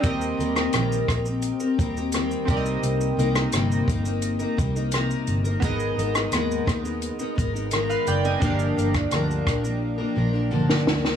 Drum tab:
HH |x-x-x-x-x-x-x-x-|x-x-x-x-x-x-x-x-|x-x-x-x-x-x-x-x-|x-x-x-x---------|
SH |xxxxxxxxxxxxxxxx|xxxxxxxxxxxxxxxx|xxxxxxxxxxxxxxxx|xxxxxxxx--------|
SD |---rr-r-----r---|---rr-------r---|---rr-r-----r---|---rr-r------ooo|
BD |o-----o---o---o-|------o---o-----|o-----o---o-----|o--o--o---------|